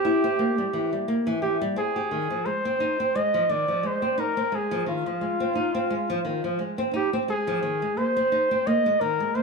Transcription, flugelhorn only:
0.00 1.12 G4 loud
1.42 1.57 G4 medium
1.78 2.47 G#4 loud
2.46 3.17 C5 loud
3.16 3.52 D#5 loud
3.51 3.88 D5 loud
3.86 4.21 C5 loud
4.20 4.57 A#4 loud
4.55 4.88 G#4 medium
4.89 6.64 F4 loud
6.95 7.10 G4 loud
7.30 7.99 G#4 loud
7.98 8.68 C5 loud
8.67 9.02 D#5 loud
9.01 9.37 A#4 loud
9.35 9.43 C5 loud

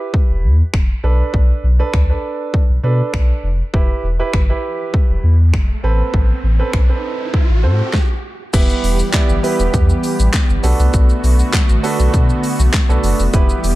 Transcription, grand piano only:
0.00 0.52 E4 medium
0.00 0.52 G4 medium
0.00 0.53 B4 medium
1.04 1.64 D4 medium
1.04 1.64 A4 medium
1.04 1.64 B4 medium
1.79 2.00 D4 medium
1.79 2.00 A4 medium
1.79 2.00 B4 medium
2.09 2.61 D4 medium
2.09 2.61 A4 medium
2.09 2.61 B4 medium
2.83 3.46 D4 medium
2.83 3.46 A4 medium
2.83 3.46 B4 medium
3.73 4.05 E4 medium
3.73 4.05 G4 medium
3.73 4.05 B4 medium
4.19 4.40 E4 medium
4.19 4.40 G4 medium
4.19 4.40 B4 medium
4.49 5.32 E4 medium
4.49 5.32 G4 medium
4.49 5.33 B4 medium
5.83 6.44 C4 medium
5.83 6.44 A4 medium
5.83 6.44 B4 medium
6.59 6.80 C4 medium
6.59 6.80 A4 medium
6.59 6.80 B4 medium
6.89 7.41 C4 medium
6.89 7.41 A4 medium
6.89 7.41 B4 medium
7.63 7.94 C4 medium
7.63 7.94 A4 medium
7.63 7.94 C5 medium
8.53 8.96 B3 medium
8.53 8.96 E4 medium
8.53 8.96 G4 medium
8.53 8.96 B4 medium
9.13 9.35 B3 medium
9.13 9.35 E4 medium
9.13 9.35 G4 medium
9.13 9.35 D5 loud
9.43 10.27 B3 medium
9.43 10.27 E4 medium
9.43 10.27 G4 medium
9.43 10.27 B4 medium
10.63 11.60 B3 medium
10.63 11.60 D4 medium
10.63 11.60 F#4 medium
10.63 11.60 A4 medium
11.83 12.57 B3 medium
11.83 12.57 D4 medium
11.83 12.57 F#4 medium
11.83 12.57 A4 loud
12.89 13.21 B3 medium
12.89 13.21 D4 medium
12.89 13.21 F#4 medium
12.89 13.21 A4 medium
13.33 13.75 B3 medium
13.33 13.75 E4 medium
13.33 13.75 G4 medium
13.33 13.75 B4 loud

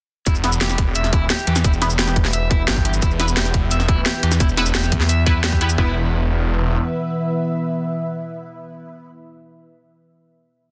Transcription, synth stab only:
0.44 0.49 B3 loud
0.44 0.49 E4 medium
0.44 0.49 B4 loud
1.82 1.86 B3 loud
1.82 1.86 E4 medium
1.82 1.86 B4 loud
3.20 3.24 B3 loud
3.20 3.24 E4 medium
3.20 3.24 B4 loud
4.57 4.62 B3 loud
4.57 4.62 E4 medium
4.57 4.62 B4 loud
5.26 5.31 B3 medium
5.26 5.31 E4 medium
5.26 5.31 B4 loud
5.61 5.69 B3 medium
5.61 5.69 E4 medium
5.61 5.69 B4 medium
5.78 9.09 B3 medium
5.78 9.09 E4 medium
5.78 9.09 B4 medium

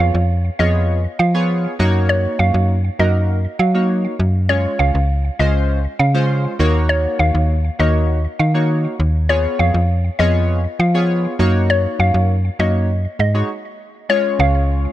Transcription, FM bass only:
0.00 0.11 F2 medium
0.14 0.50 F2 medium
0.60 1.07 F2 loud
1.20 1.67 F3 medium
1.80 2.27 F#2 loud
2.39 2.51 F#2 medium
2.54 2.90 F#2 medium
2.99 3.47 F#2 loud
3.59 4.07 F#3 medium
4.20 4.67 F#2 loud
4.80 4.91 C#2 medium
4.95 5.30 C#2 medium
5.40 5.87 C#2 loud
6.00 6.47 C#3 medium
6.60 7.07 D#2 medium
7.20 7.31 D#2 medium
7.35 7.70 D#2 medium
7.80 8.27 D#2 loud
8.40 8.87 D#3 medium
9.00 9.47 D#2 loud
9.60 9.71 F2 medium
9.74 10.10 F2 medium
10.19 10.67 F2 loud
10.80 11.27 F3 medium
11.39 11.87 F#2 loud
11.99 12.11 F#2 medium
12.14 12.50 F#2 medium
12.59 13.07 F#2 loud
13.19 13.43 G#2 medium
14.39 14.87 C#2 loud

